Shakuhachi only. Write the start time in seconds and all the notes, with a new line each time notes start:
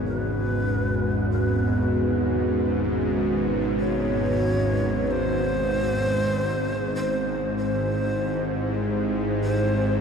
0.07 B4
1.32 B4
3.80 C#5
5.07 C5 C#5
6.96 C5
7.58 C5
9.43 C5